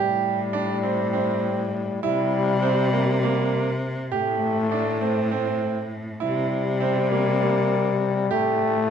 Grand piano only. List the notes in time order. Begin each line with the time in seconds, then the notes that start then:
Already playing: G4
0.53 D4
0.83 C4
1.13 C4
2.03 E4
2.62 C4
2.93 A#3
3.23 A#3
4.12 G4
4.71 D4
5.01 C4
5.31 C4
6.20 E4
6.80 C4
7.11 A#3
7.41 A#3
8.31 G4